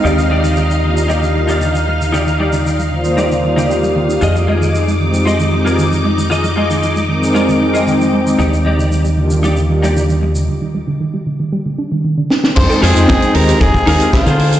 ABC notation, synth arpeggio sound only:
X:1
M:4/4
L:1/16
Q:1/4=115
K:Fdor
V:1 name="Synth arpeggio sound" clef=bass
D, E, G, D, E, G, D, E, G, D, E, G, D, E, G, D, | D, E, G, D, E, G, D, E, G, D, E, D, B, G, E, E | E, F, A, E, F, A, E, F, A, E, F, A, E, F, A, E, | E, F, A, E, F, A, E, F, A, E, F, A, E, F, A, E, |
D, E, G, D, E, G, D, E, G, D, E, G, D, E, G, D, | D, E, G, D, E, G, D, E, G, D, D E, E, D, E E | z16 |]